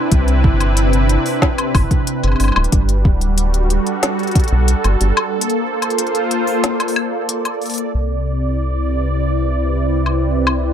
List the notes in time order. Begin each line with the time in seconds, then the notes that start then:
Already playing: C3 C4 D4 E4 B4
0.12 C2, kick, closed hi-hat
0.28 closed hi-hat
0.44 G1, kick
0.60 closed hi-hat, high woodblock
0.77 closed hi-hat
0.93 closed hi-hat
1.09 closed hi-hat
1.26 open hi-hat
1.42 kick, snare
1.58 closed hi-hat, high woodblock
1.75 G1, kick, open hi-hat, high woodblock
1.91 kick, closed hi-hat
2.07 closed hi-hat
2.23 G1, closed hi-hat, high woodblock
2.28 high woodblock
2.32 high woodblock
2.36 high woodblock
2.40 G1 G3, open hi-hat, high woodblock
2.44 high woodblock
2.48 high woodblock
2.52 high woodblock
2.56 D1, high woodblock
2.64 closed hi-hat
2.72 G1, kick, closed hi-hat
2.89 closed hi-hat
2.94 F#4
3.05 D1, kick
3.21 closed hi-hat
3.38 closed hi-hat
3.54 closed hi-hat
3.70 A4, closed hi-hat
3.87 closed hi-hat
4.03 snare, closed hi-hat
4.19 closed hi-hat
4.23 closed hi-hat
4.27 closed hi-hat
4.31 closed hi-hat
4.35 kick, closed hi-hat
4.40 closed hi-hat
4.44 closed hi-hat
4.48 closed hi-hat
4.52 B1
4.68 closed hi-hat
4.84 G1, closed hi-hat, high woodblock
5.01 G1, closed hi-hat
5.17 closed hi-hat, high woodblock
5.33 A#3
5.41 closed hi-hat
5.50 closed hi-hat
5.54 C5
5.76 F4
5.82 closed hi-hat, high woodblock
5.90 closed hi-hat
5.98 closed hi-hat
6.07 closed hi-hat
6.15 closed hi-hat
6.31 closed hi-hat
6.47 D5, open hi-hat
6.64 snare, closed hi-hat
6.80 closed hi-hat, high woodblock
6.88 open hi-hat
6.96 high woodblock
7.29 closed hi-hat
7.45 closed hi-hat, high woodblock
7.62 open hi-hat
7.66 open hi-hat
7.70 open hi-hat
7.74 open hi-hat
7.78 closed hi-hat
7.94 C2 C3
8.21 C4
8.27 E4
8.88 B4
10.06 high woodblock
10.47 high woodblock